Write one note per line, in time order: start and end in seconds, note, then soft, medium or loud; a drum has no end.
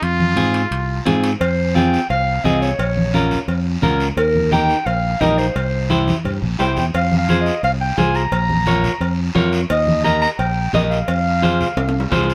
0.02 0.37 F2 medium
0.02 1.07 F4 medium
0.02 high timbale medium
0.02 long guiro medium
0.20 high conga medium
0.36 0.65 G#2 medium
0.36 0.61 C4 medium
0.36 0.61 F4 soft
0.36 0.61 G#4 medium
0.36 high conga medium
0.36 high timbale medium
0.36 short guiro medium
0.54 high timbale medium
0.54 short guiro medium
0.71 0.99 C2 medium
0.71 high timbale medium
0.71 long guiro medium
1.05 1.34 G#2 medium
1.05 1.30 C4 medium
1.05 1.30 F4 medium
1.05 1.31 G#4 medium
1.05 high conga medium
1.05 high timbale medium
1.05 short guiro medium
1.24 high timbale medium
1.24 short guiro medium
1.40 1.96 F2 medium
1.40 1.77 C5 medium
1.40 cowbell loud
1.40 long guiro medium
1.75 2.00 C4 medium
1.75 2.00 F4 medium
1.75 2.00 G#4 medium
1.75 2.09 G5 loud
1.75 high conga medium
1.75 short guiro medium
1.94 short guiro medium
2.10 2.38 C2 medium
2.10 2.46 F5 medium
2.10 cowbell medium
2.10 long guiro medium
2.44 2.72 C2 medium
2.44 2.69 C4 medium
2.44 2.69 F4 medium
2.44 2.69 G#4 medium
2.44 2.61 D#5 medium
2.44 high conga medium
2.44 short guiro medium
2.61 3.27 C#5 medium
2.61 short guiro medium
2.79 3.34 A#1 loud
2.79 cowbell loud
2.79 long guiro medium
2.97 high conga medium
3.14 3.38 C#4 medium
3.14 3.38 F4 medium
3.14 3.38 A#4 medium
3.14 high conga medium
3.14 short guiro medium
3.31 low conga medium
3.31 short guiro medium
3.48 3.76 F2 medium
3.48 cowbell medium
3.48 long guiro medium
3.82 4.10 C#2 medium
3.82 4.07 C#4 medium
3.82 4.07 F4 medium
3.82 4.07 A#4 medium
3.82 high conga medium
3.82 low conga medium
3.82 short guiro medium
4.00 short guiro medium
4.17 4.72 D#2 loud
4.17 4.50 A#4 medium
4.17 cowbell loud
4.17 long guiro medium
4.35 high conga medium
4.51 4.76 D#4 medium
4.51 4.76 G4 medium
4.51 4.76 A#4 medium
4.51 4.88 G5 loud
4.51 high conga medium
4.51 short guiro medium
4.69 short guiro medium
4.86 5.14 A#1 medium
4.86 5.22 F5 loud
4.86 cowbell medium
4.86 long guiro medium
5.21 5.48 A#1 loud
5.21 5.45 D#4 medium
5.21 5.45 G4 medium
5.21 5.46 A#4 medium
5.21 5.40 D#5 medium
5.21 high conga medium
5.21 low timbale medium
5.21 short guiro medium
5.38 6.08 C5 medium
5.38 short guiro medium
5.56 6.11 C2 loud
5.56 cowbell medium
5.56 long guiro medium
5.90 6.14 E4 medium
5.90 6.15 G4 medium
5.90 6.15 C5 medium
5.90 high conga medium
5.90 short guiro medium
6.08 high conga medium
6.08 short guiro medium
6.25 6.39 G2 medium
6.25 cowbell medium
6.25 low conga medium
6.25 long guiro medium
6.42 6.58 A#1 medium
6.42 low conga medium
6.59 6.75 C2 medium
6.59 6.83 E4 medium
6.59 6.84 G4 medium
6.59 6.84 C5 medium
6.59 6.76 G5 medium
6.59 low timbale medium
6.59 short guiro medium
6.77 6.93 E2 medium
6.77 6.86 G5 medium
6.77 low conga medium
6.77 short guiro medium
6.94 7.50 F2 medium
6.94 7.16 F5 medium
6.94 cowbell loud
6.94 long guiro medium
7.12 high conga medium
7.18 7.39 F5 medium
7.29 7.53 F4 medium
7.29 7.53 G#4 medium
7.29 7.53 C5 medium
7.29 high conga medium
7.29 short guiro medium
7.41 7.62 D#5 medium
7.46 short guiro medium
7.63 7.91 C2 medium
7.63 7.72 F5 loud
7.63 cowbell medium
7.63 long guiro medium
7.81 8.00 G5 medium
7.97 8.25 C2 medium
7.97 8.22 F4 medium
7.97 8.22 G#4 medium
7.97 8.22 C5 medium
7.97 8.17 G#5 loud
7.97 high conga medium
7.97 low timbale medium
7.97 short guiro medium
8.15 9.19 A#5 loud
8.15 short guiro medium
8.32 8.87 A#1 loud
8.32 cowbell loud
8.32 long guiro medium
8.50 high conga medium
8.66 8.91 F4 medium
8.66 8.91 A#4 medium
8.66 8.91 C#5 medium
8.66 high conga medium
8.66 short guiro medium
8.84 low conga medium
8.84 short guiro medium
9.00 9.28 F2 medium
9.00 cowbell medium
9.00 long guiro medium
9.35 9.63 F2 loud
9.35 9.60 F4 loud
9.35 9.60 A#4 medium
9.35 9.60 C#5 loud
9.35 high conga medium
9.35 low conga medium
9.35 low timbale medium
9.35 short guiro medium
9.53 short guiro medium
9.70 10.25 D#2 loud
9.70 10.03 D#5 medium
9.70 cowbell loud
9.70 long guiro medium
9.87 high conga medium
10.04 10.29 G4 medium
10.04 10.29 A#4 medium
10.04 10.29 D#5 medium
10.04 10.21 A#5 loud
10.04 high conga medium
10.04 short guiro medium
10.22 10.30 A#5 loud
10.22 short guiro medium
10.39 10.67 A#1 medium
10.39 10.71 G5 medium
10.39 cowbell medium
10.39 long guiro medium
10.73 11.01 A#1 loud
10.73 10.98 G4 medium
10.73 10.98 A#4 medium
10.73 10.82 D#5 medium
10.73 10.98 D#5 medium
10.73 high conga medium
10.73 low timbale medium
10.73 short guiro medium
10.91 12.25 F5 medium
10.91 short guiro medium
11.08 11.63 F2 medium
11.08 cowbell loud
11.08 long guiro medium
11.42 11.67 F4 medium
11.42 11.67 G#4 medium
11.42 11.67 C5 loud
11.42 high conga medium
11.42 short guiro medium
11.61 low conga medium
11.61 short guiro medium
11.77 12.05 C2 medium
11.77 cowbell medium
11.77 high timbale medium
11.77 long guiro medium
11.89 high timbale medium
12.00 low timbale medium
12.12 12.34 C2 loud
12.12 12.34 F4 medium
12.12 12.34 G#4 medium
12.12 12.34 C5 loud
12.12 high conga medium
12.12 low conga medium
12.12 low timbale loud
12.12 short guiro medium
12.24 low timbale medium
12.30 short guiro medium